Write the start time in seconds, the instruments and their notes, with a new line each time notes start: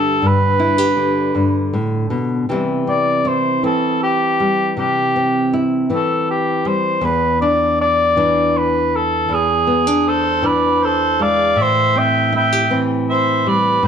Already playing: nylon-string guitar G2 D3 D4 G4, cor anglais A4
0.22 nylon-string guitar G2
0.27 cor anglais B4
0.60 nylon-string guitar E4
0.78 nylon-string guitar G4
0.97 nylon-string guitar D3
1.35 nylon-string guitar G2
1.73 nylon-string guitar A2
2.10 nylon-string guitar B2
2.49 nylon-string guitar C3 E3 G3 C4 E4
2.87 nylon-string guitar C4, cor anglais D5
3.25 nylon-string guitar E4, cor anglais C5
3.63 nylon-string guitar E3 C4, cor anglais A4
4.03 cor anglais G4
4.40 nylon-string guitar G3
4.77 nylon-string guitar C3, cor anglais G4
5.16 nylon-string guitar C4
5.54 nylon-string guitar E4
5.90 nylon-string guitar E3 C4
5.95 cor anglais A4
6.31 cor anglais G4
6.65 nylon-string guitar G3, cor anglais C5
7.01 nylon-string guitar E2
7.05 cor anglais B4
7.42 nylon-string guitar D4, cor anglais D5
7.81 cor anglais D5
8.16 nylon-string guitar E3 D4
8.58 cor anglais B4
8.96 cor anglais A4
9.29 nylon-string guitar E2
9.33 cor anglais G#4
9.67 nylon-string guitar B3
9.87 nylon-string guitar D4
10.07 cor anglais A4, harmonica C5
10.42 nylon-string guitar E3 D4, harmonica D5
10.47 cor anglais B4
10.84 cor anglais A4, harmonica C5
11.19 nylon-string guitar G#3, cor anglais D5, harmonica F5
11.56 nylon-string guitar A2, harmonica E5
11.62 cor anglais C5
11.95 nylon-string guitar C4, cor anglais E5, harmonica G5
12.33 nylon-string guitar E4, cor anglais E5, harmonica G5
12.53 nylon-string guitar G4
12.70 nylon-string guitar E3 C4
13.10 cor anglais C5, harmonica E5
13.46 nylon-string guitar G3, cor anglais B4, harmonica D5
13.83 nylon-string guitar A2, harmonica C5